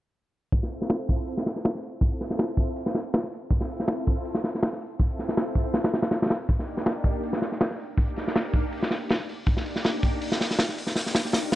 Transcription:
0.52 kick loud
0.52 open hi-hat medium
0.63 snare soft
0.71 open hi-hat medium
0.82 snare soft
0.89 snare loud
0.89 open hi-hat medium
1.08 kick medium
1.08 open hi-hat medium
1.27 open hi-hat medium
1.37 snare medium
1.46 snare soft
1.46 open hi-hat medium
1.56 snare soft
1.64 snare loud
1.64 open hi-hat medium
1.75 snare soft
1.83 open hi-hat medium
2.01 kick loud
2.01 open hi-hat medium
2.11 closed hi-hat soft
2.21 snare soft
2.21 open hi-hat medium
2.30 snare soft
2.39 snare loud
2.39 open hi-hat medium
2.57 kick medium
2.57 open hi-hat medium
2.76 open hi-hat medium
2.86 snare medium
2.95 snare medium
2.95 open hi-hat medium
3.13 snare loud
3.13 open hi-hat medium
3.24 snare soft
3.32 open hi-hat medium
3.51 kick loud
3.51 open hi-hat medium
3.61 snare soft
3.69 open hi-hat medium
3.80 snare soft
3.88 snare loud
3.88 open hi-hat medium
4.06 kick medium
4.06 open hi-hat medium
4.25 open hi-hat medium
4.35 snare medium
4.44 snare soft
4.44 open hi-hat medium
4.55 snare soft
4.62 snare loud
4.62 open hi-hat medium
4.73 snare soft
4.82 open hi-hat medium
4.99 kick loud
4.99 open hi-hat medium
5.10 closed hi-hat soft
5.19 snare soft
5.19 open hi-hat medium
5.29 snare soft
5.37 snare loud
5.37 open hi-hat medium
5.55 kick medium
5.55 open hi-hat medium
5.74 snare medium
5.74 open hi-hat medium
5.84 snare loud
5.84 open hi-hat medium
5.93 snare medium
5.93 open hi-hat medium
6.02 snare medium
6.02 open hi-hat medium
6.11 snare loud
6.11 open hi-hat medium
6.22 snare medium
6.22 open hi-hat medium
6.26 snare medium
6.26 open hi-hat medium
6.30 snare loud
6.30 open hi-hat medium
6.49 kick medium
6.49 open hi-hat medium
6.59 snare soft
6.68 open hi-hat medium
6.77 snare soft
6.86 snare loud
6.86 open hi-hat medium
7.04 kick medium
7.04 open hi-hat medium
7.23 open hi-hat medium
7.33 snare medium
7.42 snare soft
7.42 open hi-hat medium
7.52 snare soft
7.60 snare loud
7.60 open hi-hat medium
7.71 snare soft
7.79 open hi-hat medium
7.97 kick loud
7.97 open hi-hat medium
8.08 closed hi-hat soft
8.16 snare soft
8.16 open hi-hat medium
8.28 snare soft
8.35 snare loud
8.35 open hi-hat medium
8.54 kick loud
8.54 open hi-hat medium
8.72 open hi-hat medium
8.83 snare medium
8.91 snare soft
8.91 open hi-hat medium
9.09 snare loud
9.09 open hi-hat medium
9.20 snare soft
9.29 open hi-hat medium
9.46 kick loud
9.46 open hi-hat medium
9.57 snare soft
9.66 open hi-hat medium
9.76 snare soft
9.84 snare loud
9.84 open hi-hat medium
10.03 kick medium
10.03 open hi-hat medium
10.21 open hi-hat loud
10.32 snare medium
10.41 snare soft
10.41 open hi-hat medium
10.51 snare soft
10.59 snare loud
10.59 open hi-hat medium
10.69 snare soft
10.78 open hi-hat medium
10.87 snare soft
10.96 snare soft
10.96 open hi-hat medium
11.06 snare soft
11.15 snare loud
11.15 open hi-hat medium
11.25 snare soft
11.32 snare loud
11.32 open hi-hat medium
11.52 snare medium
11.52 open hi-hat medium

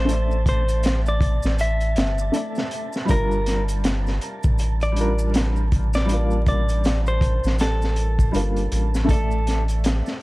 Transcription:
0.00 1.39 A1 medium
0.00 0.05 A3 medium
0.00 0.08 A4 medium
0.00 0.43 C5 medium
0.00 0.11 D5 medium
0.00 0.13 E5 medium
0.00 10.22 A5 medium
0.05 2.28 A3 medium
0.05 2.30 A4 medium
0.05 closed hi-hat medium
0.09 2.31 D5 medium
0.09 maracas medium
0.13 2.32 E5 medium
0.31 maracas soft
0.46 1.00 C5 medium
0.46 kick medium
0.46 closed hi-hat medium
0.69 closed hi-hat soft
0.69 maracas medium
0.83 snare loud
0.83 closed hi-hat medium
0.83 maracas medium
1.06 1.55 D5 medium
1.06 maracas soft
1.21 kick loud
1.21 closed hi-hat medium
1.43 1.96 A1 medium
1.43 snare medium
1.43 maracas medium
1.59 2.98 E5 medium
1.59 closed hi-hat medium
1.59 maracas medium
1.81 closed hi-hat soft
1.81 maracas soft
1.96 2.30 G1 medium
1.96 snare loud
1.96 closed hi-hat medium
2.18 maracas medium
2.32 3.04 A3 medium
2.32 3.05 A4 medium
2.32 3.05 D5 medium
2.32 closed hi-hat medium
2.32 maracas medium
2.36 3.06 E5 medium
2.55 snare medium
2.55 maracas soft
2.71 closed hi-hat medium
2.93 snare soft
2.93 maracas medium
3.05 4.91 G3 medium
3.05 4.92 D4 medium
3.05 closed hi-hat medium
3.05 maracas medium
3.09 4.19 G1 loud
3.09 4.94 F4 medium
3.09 3.63 A#4 medium
3.09 kick medium
3.14 4.95 A#4 medium
3.31 maracas soft
3.46 snare soft
3.46 closed hi-hat medium
3.68 closed hi-hat soft
3.68 maracas medium
3.84 snare loud
3.84 closed hi-hat medium
3.84 maracas medium
4.07 snare soft
4.07 maracas soft
4.21 closed hi-hat medium
4.43 7.40 A1 medium
4.43 kick loud
4.43 maracas medium
4.58 closed hi-hat medium
4.58 maracas medium
4.81 5.30 D5 medium
4.81 closed hi-hat soft
4.81 maracas soft
4.92 6.03 G3 medium
4.92 6.04 D4 medium
4.96 6.06 F4 medium
4.96 closed hi-hat medium
5.00 6.07 A#4 loud
5.19 maracas medium
5.34 snare loud
5.34 closed hi-hat medium
5.34 maracas medium
5.56 maracas soft
5.72 kick medium
5.72 closed hi-hat medium
5.93 6.42 D5 medium
5.93 snare medium
5.93 maracas medium
6.05 8.28 G3 medium
6.05 8.30 D4 medium
6.05 closed hi-hat medium
6.05 maracas medium
6.11 8.32 A#3 medium
6.11 8.31 F4 medium
6.31 maracas soft
6.46 7.00 D5 medium
6.46 kick medium
6.46 closed hi-hat medium
6.69 closed hi-hat soft
6.69 maracas medium
6.84 snare loud
6.84 closed hi-hat medium
6.84 maracas medium
7.06 7.55 C5 medium
7.06 maracas soft
7.21 kick medium
7.21 closed hi-hat medium
7.44 8.31 A1 medium
7.44 snare medium
7.44 maracas medium
7.59 8.98 A4 medium
7.59 snare loud
7.59 closed hi-hat medium
7.59 maracas medium
7.82 snare soft
7.82 maracas soft
7.96 closed hi-hat medium
8.19 kick medium
8.19 maracas medium
8.32 8.68 G1 medium
8.32 9.04 G3 medium
8.32 9.06 A#3 medium
8.32 9.05 D4 medium
8.32 9.05 F4 medium
8.32 closed hi-hat medium
8.32 maracas medium
8.56 closed hi-hat soft
8.56 maracas soft
8.71 10.02 A1 medium
8.71 closed hi-hat medium
8.94 snare soft
8.94 maracas medium
9.05 10.22 A3 medium
9.05 10.22 A4 medium
9.09 9.63 A4 loud
9.09 10.22 D5 medium
9.09 10.22 E5 loud
9.09 kick medium
9.09 closed hi-hat medium
9.09 maracas medium
9.31 maracas soft
9.47 snare soft
9.47 closed hi-hat medium
9.68 closed hi-hat soft
9.68 maracas medium
9.84 snare loud
9.84 closed hi-hat medium
9.84 maracas medium
10.06 snare soft
10.06 maracas soft

